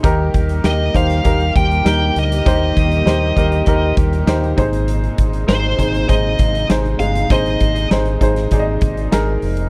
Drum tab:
HH |x-xxx-xxxxxxx-xx|x-xxx-xxx-xxxxxx|xxxxx-xxx-xxxxxx|xxxxxxxxx-xxx-ox|
SD |----o--o----o---|----o-------o---|----o-------o---|----o--o----o---|
BD |o-o---o-o-o-----|o-o---o-o-o---o-|--o---o-o-o-----|o-o---o-o-o-----|